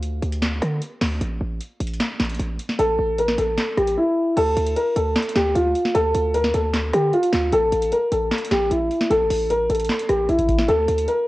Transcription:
0.00 0.21 D2 loud
0.00 closed hi-hat medium
0.22 0.60 D2 loud
0.22 closed hi-hat soft
0.32 closed hi-hat medium
0.42 snare loud
0.42 clap medium
0.42 closed hi-hat medium
0.62 0.81 D3 loud
0.62 cross-stick medium
0.62 closed hi-hat medium
0.82 closed hi-hat medium
1.01 1.20 D2 loud
1.01 snare medium
1.01 clap medium
1.01 open hi-hat medium
1.21 1.40 A1 loud
1.21 closed hi-hat medium
1.41 1.60 A1 loud
1.61 closed hi-hat medium
1.80 1.99 A1 loud
1.80 closed hi-hat medium
1.87 closed hi-hat medium
1.94 closed hi-hat soft
2.00 snare loud
2.00 clap medium
2.00 closed hi-hat medium
2.20 2.39 A1 loud
2.20 snare medium
2.20 clap medium
2.20 closed hi-hat medium
2.25 closed hi-hat medium
2.30 closed hi-hat medium
2.35 closed hi-hat medium
2.39 2.58 A1 loud
2.39 closed hi-hat medium
2.59 closed hi-hat medium
2.69 snare medium
2.79 2.98 A1 loud
2.79 3.16 A4 loud
2.79 closed hi-hat medium
2.99 3.37 A1 loud
3.18 3.35 A#4 medium
3.18 closed hi-hat medium
3.28 snare medium
3.38 3.57 A1 loud
3.38 3.75 A4 medium
3.38 closed hi-hat medium
3.58 snare loud
3.58 clap medium
3.58 closed hi-hat medium
3.78 3.97 A1 loud
3.78 3.95 G4 medium
3.78 cross-stick medium
3.78 closed hi-hat soft
3.87 closed hi-hat medium
3.97 4.35 E4 medium
4.37 4.56 D2 loud
4.37 4.74 A4 loud
4.37 closed hi-hat medium
4.37 crash loud
4.57 4.76 D2 loud
4.57 closed hi-hat medium
4.66 closed hi-hat medium
4.76 4.93 A#4 medium
4.76 closed hi-hat medium
4.96 5.15 D2 loud
4.96 5.33 A4 medium
4.96 closed hi-hat medium
5.16 snare loud
5.16 clap loud
5.16 closed hi-hat medium
5.22 closed hi-hat medium
5.29 closed hi-hat medium
5.35 5.54 D2 loud
5.35 5.53 G4 medium
5.35 snare medium
5.35 clap medium
5.35 closed hi-hat medium
5.55 5.74 D2 loud
5.55 5.92 F4 medium
5.55 closed hi-hat medium
5.75 closed hi-hat medium
5.85 snare medium
5.94 6.14 D2 loud
5.94 6.32 A4 loud
5.94 closed hi-hat medium
6.14 6.52 D2 loud
6.14 closed hi-hat loud
6.34 6.51 A#4 medium
6.34 closed hi-hat medium
6.44 snare medium
6.54 6.92 D2 loud
6.54 6.91 A4 medium
6.54 closed hi-hat medium
6.74 snare loud
6.74 clap loud
6.74 closed hi-hat medium
6.93 7.12 D3 loud
6.93 7.11 G4 medium
6.93 cross-stick medium
6.93 closed hi-hat medium
7.13 7.50 F4 medium
7.13 closed hi-hat soft
7.23 closed hi-hat medium
7.33 7.52 D2 loud
7.33 snare loud
7.33 clap medium
7.33 closed hi-hat medium
7.53 7.72 A1 loud
7.53 7.90 A4 loud
7.53 closed hi-hat medium
7.72 7.91 A1 loud
7.72 closed hi-hat medium
7.82 closed hi-hat medium
7.92 8.09 A#4 medium
7.92 closed hi-hat medium
8.12 8.31 A1 loud
8.12 8.49 A4 medium
8.12 closed hi-hat medium
8.32 snare loud
8.32 clap loud
8.32 closed hi-hat medium
8.38 closed hi-hat medium
8.45 closed hi-hat medium
8.51 8.70 A1 loud
8.51 8.68 G4 medium
8.51 snare medium
8.51 clap medium
8.51 closed hi-hat medium
8.71 8.90 A1 loud
8.71 9.08 E4 medium
8.71 closed hi-hat medium
8.91 closed hi-hat medium
9.01 snare medium
9.10 9.29 A1 loud
9.10 9.48 A4 loud
9.10 closed hi-hat medium
9.30 9.68 A1 loud
9.30 open hi-hat loud
9.50 9.67 A#4 medium
9.50 closed hi-hat medium
9.70 9.89 A1 loud
9.70 10.07 A4 medium
9.70 closed hi-hat medium
9.75 closed hi-hat medium
9.80 closed hi-hat medium
9.85 closed hi-hat medium
9.89 snare loud
9.89 clap loud
9.89 closed hi-hat soft
9.99 closed hi-hat medium
10.09 10.28 A1 loud
10.09 10.26 G4 medium
10.09 cross-stick medium
10.09 closed hi-hat medium
10.29 10.67 A1 loud
10.29 10.66 E4 medium
10.29 closed hi-hat soft
10.39 kick medium
10.39 closed hi-hat medium
10.49 kick loud
10.49 closed hi-hat medium
10.59 snare loud
10.68 10.87 D2 loud
10.68 11.05 A4 loud
10.68 closed hi-hat medium
10.88 11.07 D2 loud
10.88 closed hi-hat medium
10.98 closed hi-hat medium
11.08 11.25 A#4 medium
11.08 closed hi-hat medium

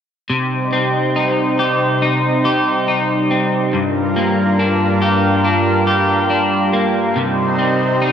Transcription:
0.29 3.69 C3 medium
0.29 3.73 C3 medium
0.29 8.12 G3 medium
0.29 3.69 D#4 medium
0.29 3.69 C5 medium
0.73 3.30 C4 soft
1.16 2.01 D#4 medium
1.59 2.45 G4 soft
2.02 2.87 D#4 soft
2.45 5.01 G4 medium
2.88 3.82 D#4 soft
3.31 3.82 C4 soft
3.73 7.16 G2 medium
3.73 7.12 G2 medium
3.73 7.13 F4 medium
3.73 7.13 A#4 medium
4.16 6.72 A#3 soft
4.59 5.43 D4 medium
5.02 5.87 G4 medium
5.44 6.29 D4 soft
5.87 8.12 G4 medium
6.30 7.24 D4 soft
6.73 7.24 A#3 soft
7.15 8.12 C3 medium
7.15 8.12 D#4 medium
7.15 8.12 C5 medium
7.58 8.12 C4 medium
8.02 8.12 D#4 soft

